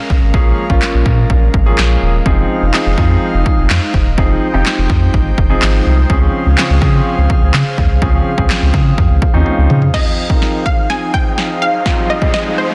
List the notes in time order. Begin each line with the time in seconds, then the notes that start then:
Already playing: G#3 C#4 A#4 F5
0.10 C2, kick
0.22 G#1
0.34 A#1 F3 A#3 C#4 G#4, kick
0.70 A#1 F3 A#3 C#4 F4, kick
0.82 snare, clap
0.94 A#1
1.06 A#2, kick
1.30 A#1, kick
1.54 G#1, kick
1.66 F3 A#3 C#4 G#4
1.78 A#1, snare, clap
2.02 D#1
2.26 F1 F3 C4 D#4 G#4 C5 F5, kick
2.62 F1
2.74 F3 C4 D#4 G#4, snare, clap
2.86 F1
2.98 F2 F3 C4 D#4 G#4, kick
3.34 F1
3.46 kick
3.58 F1
3.70 F2, snare, clap
3.94 F1, kick
4.06 D#1
4.18 F1 F3 C4 D#4 G#4 G5, kick
4.54 F1 F3 C4 D#4 G4
4.66 snare, clap
4.78 F1
4.90 F2, kick
5.14 G#1, kick
5.38 F1, kick
5.50 F3 C4 D#4 G#4
5.62 G#1, snare, clap
5.86 C2
6.10 C#2 C#3 F3 C4 C#4 G#4 F5, kick
6.46 C#2
6.57 F3 C4 C#4 G#4, snare, clap
6.70 C#2
6.82 C#3 F3 C4 C#4 G#4, kick
7.18 C#2
7.30 kick
7.42 C#2
7.54 C#3, snare, clap
7.78 D#2, kick
7.90 C2
8.02 C#2 F3 C4 C#4 G#4, kick
8.38 C#2 F3 C4 C#4 G#4, kick
8.50 snare, clap
8.62 C#2
8.74 C#3, kick
8.98 F2, kick
9.10 C#2
9.22 kick
9.34 D#2 F3 C4 C#4 D#4
9.46 C#2, high tom
9.58 C#2
9.70 C#3, mid tom
9.82 floor tom
9.94 F3 C4 D#4 G#4 C5 D#5 F5, kick, snare, crash, riser
10.30 F3 C4 D#4 A#4, kick
10.42 snare
10.66 F5, kick
10.90 F3 C4 D#4 G#4 G#5, snare
11.14 G5, kick
11.38 snare
11.62 F5
11.85 F3 C4 D#4 F4, kick, snare
12.10 D#5
12.21 F3 C4 D#4 G#4, kick
12.34 D#5, snare
12.58 C5